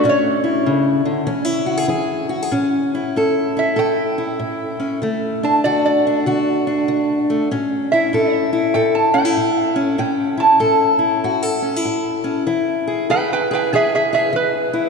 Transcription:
0.04 A2 C#4
0.09 C#5
0.44 E4
0.66 C#3
1.05 D3
1.27 E3 C#4
1.45 E4
1.66 F#4
1.77 G#4
1.88 E3 G#4
2.29 F#4
2.42 G#4
2.51 A2 C#4
2.95 E4
3.16 A2 A4
3.57 E4 E5
3.76 A2 A4 G5
4.18 E4
4.39 A2
4.80 C#4
5.02 D3 A3
5.43 D4 A5
5.64 D3 F#4 D5
5.86 D5
6.07 D4
6.26 D3 F#4
6.67 D4
6.88 D3
7.30 A3
7.51 A2 C#4
7.92 E4 E5
8.13 A2 A4
8.33 C5
8.53 E4
8.74 A2 A4 G5
8.95 A5
9.14 C#4 G5
9.25 E4
9.37 A2
9.76 C#4
9.98 A2 C#4 G5
10.37 E4 A5
10.60 A2 A4
10.99 E4
11.24 A2 F#4
11.43 A4
11.62 C#4
11.76 E4
11.85 A2
12.24 C#4
12.46 E3 E4
12.87 G#4
13.10 E3 G#4 B4 G5
13.33 B4 G5
13.51 G#4 B4 G5
13.73 E3 G#4 E5
13.95 G#4 E5
14.13 G#4 E5
14.33 E3 B4
14.73 E4

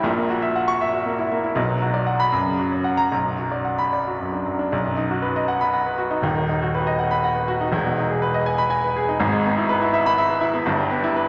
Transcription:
Already playing: G1 E4 G5
0.03 A#1 A#2
0.17 A#3
0.30 F#4
0.42 E5
0.56 F#5
0.68 C#6
0.81 E5
0.94 F#4
1.06 A#3
1.19 E4
1.32 A#3
1.44 E4
1.55 B1 B2
1.70 F#3
1.82 F#4
1.94 D5
2.06 F#5
2.20 B5
2.32 F#2
2.45 C#3
2.59 F#4
2.72 C#5
2.84 F#5
2.97 A#5
3.12 B1
3.25 F#2
3.39 F#4
3.51 D5
3.65 F#5
3.78 B5
3.93 D5
4.07 F#4
4.20 F#2
4.33 D4
4.46 F#2
4.59 D4
4.72 B1
4.85 F#2
4.97 D#4
5.11 F#4
5.22 B4
5.36 D#5
5.48 F#5
5.61 B5
5.73 F#5
5.86 B4
5.98 F#4
6.11 D#4
6.22 D#1 D#2
6.36 D#3
6.49 D#4
6.62 F#4
6.75 B4
6.87 D#5
6.99 F#5
7.11 B5
7.24 F#5
7.35 B4
7.48 F#4
7.61 D#4
7.71 E1 E2
7.86 B2
7.98 D#4
8.10 G#4
8.22 B4
8.34 D#5
8.46 G#5
8.58 B5
8.70 G#5
8.84 B4
8.96 G#4
9.09 D#4
9.20 G#1 G#2
9.33 G#3
9.46 B3
9.58 E4
9.69 B4
9.82 E4
9.94 E5
10.06 B5
10.18 E5
10.30 B4
10.41 E4
10.54 B3
10.66 G1 G2
10.78 G3
10.91 B3
11.04 E4
11.16 B4

